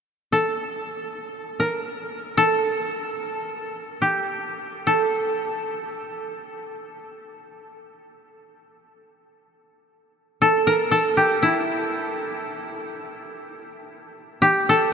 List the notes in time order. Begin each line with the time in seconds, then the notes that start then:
0.32 A4
1.60 A#4
2.37 A4
4.02 G4
4.87 A4
10.42 A4
10.67 A#4
10.91 A4
11.17 G4
11.43 E4
14.42 G4
14.69 A4